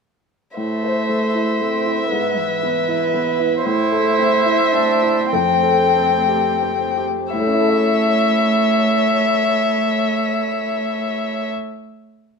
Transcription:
0.57 2.08 A2 soft
0.57 1.56 A3 soft
0.57 2.08 A3 soft
0.57 5.28 E4 soft
0.57 2.08 C5 soft
0.57 3.61 E5 soft
0.84 1.25 C5 soft
1.09 1.50 A3 soft
1.35 1.76 E4 soft
1.60 2.02 A3 soft
1.60 2.11 C4 medium
1.86 2.12 E4 soft
2.12 3.61 G#2 soft
2.12 2.38 B3 soft
2.12 3.66 B3 soft
2.12 3.66 B4 soft
2.12 3.63 B4 soft
2.37 3.65 E3 medium
2.37 2.78 B4 soft
2.63 3.03 B3 soft
2.88 3.29 E4 soft
3.14 3.55 B3 soft
3.39 3.66 E4 soft
3.64 5.28 A2 medium
3.64 7.32 A3 soft
3.64 4.74 E4 medium
3.64 5.34 C5 medium
3.64 7.33 C5 soft
3.64 5.28 E5 medium
3.92 4.34 A4 soft
4.19 4.62 C4 soft
4.45 4.90 E4 soft
4.72 5.21 C4 soft
4.72 5.31 D4 medium
5.03 5.33 E4 soft
5.32 7.29 F2 soft
5.32 6.94 C4 medium
5.32 7.34 G4 soft
5.32 7.05 A4 soft
5.32 7.02 G5 medium
5.63 6.15 A4 soft
5.96 6.49 C4 soft
6.28 6.83 G4 soft
6.62 7.19 C4 soft
6.97 7.33 G4 soft
7.33 11.47 A2 soft
7.33 11.47 A3 medium
7.33 11.48 E4 soft
7.33 11.47 C#5 soft
7.33 11.48 C#5 medium
7.33 11.47 E5 medium
7.40 11.55 A3 soft
7.47 11.61 C#4 soft
7.54 11.68 E4 soft
7.61 11.75 A4 soft
7.68 11.82 E5 soft

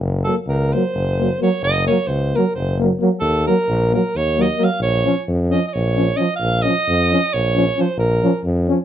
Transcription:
0.00 0.27 F#1 medium
0.24 0.35 F#3 medium
0.24 0.37 A#3 soft
0.24 0.35 A4 medium
0.47 0.74 C#2 medium
0.47 0.75 A#4 medium
0.73 0.84 F#3 medium
0.73 0.83 A#3 medium
0.73 1.40 C5 loud
0.94 1.31 F#1 medium
1.19 1.30 F#3 medium
1.19 1.28 A#3 medium
1.40 1.50 F#3 medium
1.40 1.49 A#3 medium
1.40 1.62 C#5 medium
1.62 1.88 F#1 medium
1.62 1.87 D#5 loud
1.88 1.98 F#3 medium
1.88 1.96 A#3 medium
1.88 2.08 C#5 loud
2.07 2.34 C#2 medium
2.07 2.38 C5 loud
2.34 2.45 F#3 medium
2.34 2.43 A#3 medium
2.34 2.55 A#4 medium
2.55 2.92 F#1 medium
2.55 2.78 C5 medium
2.79 2.88 A#3 medium
2.83 2.91 F#3 medium
3.00 3.10 F#3 medium
3.00 3.08 A#3 medium
3.20 3.47 D#2 medium
3.20 3.45 A4 loud
3.46 3.57 F#3 medium
3.46 3.55 A#3 medium
3.46 3.91 A#4 medium
3.68 3.94 A#1 loud
3.92 4.02 F#3 medium
3.92 4.01 A#3 medium
3.92 4.18 A#4 medium
4.15 4.51 D#2 medium
4.15 4.43 C#5 loud
4.37 4.47 F#3 medium
4.37 4.46 A#3 medium
4.42 4.66 D#5 medium
4.57 4.68 F#3 medium
4.57 4.66 A#3 medium
4.64 4.82 F5 loud
4.80 5.06 A#1 medium
4.80 5.25 C#5 loud
5.05 5.14 F3 medium
5.05 5.14 C#4 medium
5.28 5.53 F2 medium
5.50 5.62 F3 medium
5.50 5.60 C#4 medium
5.50 5.66 D#5 medium
5.68 5.75 D#5 medium
5.73 6.11 A#1 medium
5.73 6.18 C#5 medium
5.96 6.07 F3 soft
5.96 6.05 C#4 medium
6.16 6.27 F3 medium
6.16 6.25 C#4 soft
6.16 6.35 D#5 medium
6.36 6.64 F5 loud
6.40 6.66 A#1 medium
6.62 6.73 C#4 medium
6.62 7.35 D#5 loud
6.66 6.75 F3 medium
6.88 7.13 F2 medium
7.12 7.20 F3 medium
7.12 7.21 C#4 medium
7.33 7.69 A#1 medium
7.33 7.82 C#5 loud
7.56 7.65 F3 medium
7.56 7.65 C#4 medium
7.77 7.86 F3 medium
7.77 7.85 C#4 medium
7.77 7.98 C5 medium
7.97 8.23 A#1 medium
7.97 8.41 A#4 medium
8.23 8.32 F3 medium
8.23 8.32 C#4 medium
8.44 8.70 F2 loud
8.68 8.79 F3 medium
8.68 8.77 C#4 medium

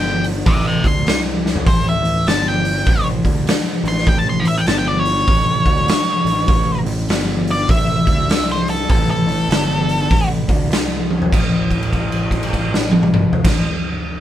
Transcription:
0.00 0.42 G1 medium
0.00 0.23 G5 medium
0.24 open hi-hat medium
0.46 0.81 A1 medium
0.46 0.66 C5 medium
0.46 0.66 E5 loud
0.46 kick loud
0.46 open hi-hat medium
0.67 0.85 E5 medium
0.67 0.86 G5 medium
0.84 1.05 D2 medium
0.84 1.18 C6 loud
0.84 kick medium
0.84 open hi-hat medium
1.06 1.62 C2 medium
1.06 snare loud
1.06 open hi-hat medium
1.46 snare medium
1.56 floor tom medium
1.66 2.02 A1 medium
1.66 1.86 C5 loud
1.66 kick loud
1.66 open hi-hat medium
1.89 2.26 E5 medium
2.04 2.24 A1 medium
2.04 open hi-hat medium
2.26 2.82 G1 medium
2.26 2.46 A5 medium
2.26 snare loud
2.26 open hi-hat medium
2.48 3.06 G5 loud
2.65 open hi-hat medium
2.86 3.22 A1 medium
2.86 kick loud
2.86 open hi-hat medium
3.24 3.45 D2 medium
3.24 kick medium
3.24 open hi-hat medium
3.46 muted picked electric bass stroke soft
3.46 snare loud
3.46 open hi-hat medium
3.84 4.05 A1 medium
3.84 open hi-hat medium
3.88 4.07 C6 medium
3.98 snare soft
4.06 4.42 A1 medium
4.06 4.18 G5 medium
4.06 kick loud
4.06 open hi-hat medium
4.18 4.26 A5 medium
4.30 4.46 C6 medium
4.40 4.44 A5 medium
4.44 4.65 A1 medium
4.44 4.60 E5 medium
4.44 open hi-hat medium
4.58 4.66 G5 medium
4.66 5.23 G1 medium
4.66 4.78 A5 medium
4.66 snare loud
4.66 open hi-hat medium
4.78 4.86 G5 medium
4.88 4.99 D5 medium
4.99 6.79 C#5 loud
5.05 open hi-hat medium
5.28 5.63 A1 medium
5.28 kick loud
5.28 open hi-hat medium
5.66 5.86 D2 loud
5.66 kick medium
5.66 open hi-hat medium
5.87 muted picked electric bass stroke soft
5.87 snare loud
5.87 open hi-hat medium
6.25 6.46 A1 medium
6.25 open hi-hat medium
6.48 6.83 A1 loud
6.48 kick loud
6.48 open hi-hat medium
6.85 7.06 A1 medium
6.85 open hi-hat medium
7.09 7.65 G1 medium
7.09 snare loud
7.09 open hi-hat medium
7.47 7.69 D5 loud
7.47 open hi-hat medium
7.69 8.04 A1 medium
7.69 8.48 E5 loud
7.69 kick loud
7.69 open hi-hat medium
8.07 8.28 D2 medium
8.07 kick medium
8.07 open hi-hat medium
8.29 8.86 C2 loud
8.29 snare loud
8.29 open hi-hat medium
8.52 8.70 C5 medium
8.68 8.89 A4 medium
8.68 open hi-hat medium
8.90 9.25 A1 loud
8.90 9.10 A4 loud
8.90 kick loud
8.90 open hi-hat medium
9.11 10.28 A4 loud
9.27 9.48 A1 medium
9.27 open hi-hat medium
9.49 10.06 G1 loud
9.49 snare loud
9.49 open hi-hat medium
9.89 open hi-hat medium
10.10 10.46 A1 medium
10.10 kick loud
10.10 open hi-hat medium
10.48 10.69 D2 medium
10.48 kick medium
10.48 open hi-hat medium
10.70 11.27 C2 loud
10.70 snare loud
10.70 open hi-hat medium
11.11 high tom medium
11.22 floor tom medium
11.32 13.31 A1 medium
11.32 kick loud
11.32 crash medium
11.71 kick medium
11.71 crash soft
11.83 crash soft
11.93 kick medium
11.93 crash soft
12.12 crash soft
12.31 kick medium
12.31 crash soft
12.43 crash soft
12.53 kick medium
12.53 crash soft
12.74 snare medium
12.91 high tom medium
13.03 mid tom medium
13.14 mid tom loud
13.33 floor tom medium
13.44 13.66 A1 medium
13.44 kick loud
13.44 snare medium
13.44 crash loud

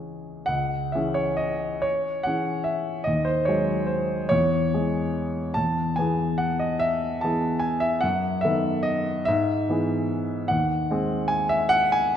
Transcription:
0.00 0.45 E3 soft
0.00 0.45 C#4 soft
0.00 0.45 G#4 soft
0.46 0.94 C#2 soft
0.46 0.94 F#5 medium
0.92 2.23 E3 soft
0.92 2.23 C#4 soft
0.92 2.23 G#4 soft
0.92 1.16 E5 medium
1.14 1.39 C#5 medium
1.37 1.82 D#5 medium
1.82 2.26 C#5 medium
2.23 3.04 E3 soft
2.23 3.04 C#4 soft
2.23 3.04 G#4 soft
2.23 2.66 F#5 medium
2.64 3.06 E5 medium
3.04 3.47 D#2 soft
3.04 3.26 D#5 medium
3.25 3.47 C5 medium
3.45 4.28 F#3 soft
3.45 4.28 G#3 soft
3.45 4.29 G#4 soft
3.45 3.88 C#5 medium
3.87 4.31 C5 medium
4.29 4.73 E2 medium
4.29 5.56 C#5 medium
4.74 5.53 E3 soft
4.74 5.54 G#3 soft
4.74 5.54 G#4 soft
5.54 5.98 E2 soft
5.54 5.98 A5 medium
5.96 7.20 E3 soft
5.96 7.20 B3 soft
5.96 7.20 G#4 soft
5.96 6.39 G#5 medium
6.38 6.60 F#5 medium
6.59 6.82 D#5 medium
6.79 7.22 E5 medium
7.21 7.99 E3 soft
7.21 7.99 B3 soft
7.21 8.00 G#4 soft
7.21 7.62 A5 medium
7.59 7.81 G#5 medium
7.80 8.02 E5 medium
8.01 8.43 F#2 soft
8.01 8.43 F#5 medium
8.41 9.24 D#3 soft
8.41 9.24 B3 soft
8.41 9.24 A4 soft
8.41 8.85 E5 medium
8.83 9.26 D#5 medium
9.25 9.68 G#2 medium
9.25 10.50 E5 medium
9.69 10.47 E3 soft
9.69 10.47 B3 soft
9.69 10.48 G#4 soft
10.48 10.90 D#2 medium
10.48 11.30 F#5 medium
10.91 12.14 G#3 soft
10.91 12.14 C4 soft
10.91 12.15 G#4 medium
11.28 11.50 G#5 medium
11.49 11.72 E5 medium
11.69 11.93 F#5 loud
11.92 12.17 G#5 medium

